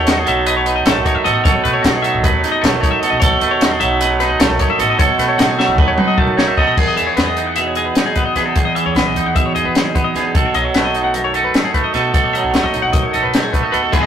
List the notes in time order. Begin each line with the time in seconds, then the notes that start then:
Already playing: D#2 B2 A3 A4
0.07 D#4 F#4, snare, closed hi-hat
0.17 G#4
0.26 B1 F#3 E5, closed hi-hat
0.46 B4 D#5, closed hi-hat
0.57 C#5
0.66 D#4 B4, closed hi-hat
0.76 D#5
0.85 B1 F#2 A3 A4, snare, closed hi-hat
0.96 B1
1.05 D#4 C#5, kick, closed hi-hat
1.15 F#2 E5
1.24 A1 B2 A4 D#5, closed hi-hat
1.34 D#5
1.44 F#2 B2 A4 C#5, kick, closed hi-hat
1.64 B2 A3 B4, closed hi-hat
1.73 C#5
1.83 B2 D#4 F#4, snare, closed hi-hat
1.93 G#4
2.02 F#3 E5, closed hi-hat
2.14 A1
2.23 D#2 B4 D#5, kick, closed hi-hat
2.32 C#5
2.42 D#4 B4, snare, closed hi-hat
2.52 D#5
2.61 F#2 B2 A3 A4, snare, closed hi-hat
2.73 B1
2.81 D#4 C#5, kick, closed hi-hat
2.91 E5
3.00 B2 A4 D#5, closed hi-hat
3.10 B2 D#5
3.20 B1 B2 A4 C#5, kick, closed hi-hat
3.31 D#2
3.40 D#2 A3 B4, closed hi-hat
3.51 C#5
3.61 D#4 F#4, snare, closed hi-hat
3.71 G#4
3.80 B1 F#3 E5, closed hi-hat
4.01 B4 D#5, snare, closed hi-hat
4.11 C#5
4.20 D#4 B4, snare, closed hi-hat
4.29 D#5
4.39 B1 F#2 A3 A4, snare, closed hi-hat
4.49 B1
4.59 D#4 C#5, kick, closed hi-hat
4.69 F#2 E5
4.79 A1 B2 A4 D#5, closed hi-hat
4.90 D#5
4.99 F#2 B2 A4 C#5, kick, closed hi-hat
5.18 B2 A3 B4, snare, closed hi-hat
5.29 C#5
5.38 B2 D#4 F#4, snare, closed hi-hat
5.48 G#4
5.59 F#3 E5, snare
5.68 A1
5.78 D#2 B4 D#5, kick
5.88 C#5
5.98 D#4 B4, mid tom
6.08 D#5
6.18 F#2 B2 A3 A4, kick
6.27 B1
6.37 D#4 C#5, snare
6.47 E5
6.57 B2 A4 D#5, kick
6.67 B2 D#5
6.77 E2 G#4, kick, crash
6.88 D#5
6.96 E2 E3 E5, closed hi-hat
7.07 C#5
7.17 E2 B3 B4, snare, closed hi-hat
7.26 D#5
7.37 D#4, closed hi-hat
7.47 F#5
7.56 B2 E5, closed hi-hat
7.67 C#5
7.75 G#4 D#5, closed hi-hat
7.86 B4
7.95 D#4, snare, closed hi-hat
8.06 G#4
8.16 B3 B4, kick, closed hi-hat
8.26 D#5
8.35 E2 E3 G#4 B4, snare, closed hi-hat
8.46 A4
8.56 E2 G#4, kick, closed hi-hat
8.65 D#5
8.75 E3 E5, closed hi-hat
8.85 E2 C#5
8.95 B1 B3 B4, snare, closed hi-hat
9.05 B1 D#5
9.14 E2 D#4, closed hi-hat
9.24 E2 F#5
9.36 B2 E3 E5, kick, closed hi-hat
9.46 C#5
9.55 E2 G#4 D#5, closed hi-hat
9.64 E3 B4
9.75 D#4, snare, closed hi-hat
9.85 G#4
9.95 E3 B3 B4, kick, closed hi-hat
10.04 D#5
10.14 E2 F#2 G#4 B4, snare, closed hi-hat
10.25 A4
10.35 B1 B2 A4, kick, closed hi-hat
10.45 C#5
10.54 B1 F#3 D#5, closed hi-hat
10.65 C#5
10.74 B1 A3 B4, snare, closed hi-hat
10.84 D#5
10.94 D#4, closed hi-hat
11.04 F#5
11.14 F#2 D#5, closed hi-hat
11.24 C#5
11.34 A4 D#5, closed hi-hat
11.44 B4
11.54 D#4, snare, closed hi-hat
11.65 G#4
11.74 A3 B4, kick, closed hi-hat
11.84 D#5
11.93 B2 A4 B4, snare, closed hi-hat
12.03 A4
12.14 B2 A4, kick, closed hi-hat
12.24 C#5
12.33 F#3 D#5, closed hi-hat
12.43 B1 C#5
12.53 F#2 A3 B4, snare, closed hi-hat
12.63 F#2 D#5
12.74 B1 D#4, closed hi-hat
12.82 B1 F#5
12.93 F#2 B2 D#5, kick, closed hi-hat
13.03 C#5
13.13 B1 A4 D#5, closed hi-hat
13.23 B2 B4
13.34 D#4, snare, closed hi-hat
13.43 G#4
13.53 B2 A3 B4, kick, closed hi-hat
13.63 D#5
13.72 D#2 B2 A4 B4, closed hi-hat
13.83 A4
13.92 E2 E3 G#3 B3 E4 G#4, kick, closed hi-hat
14.03 D#5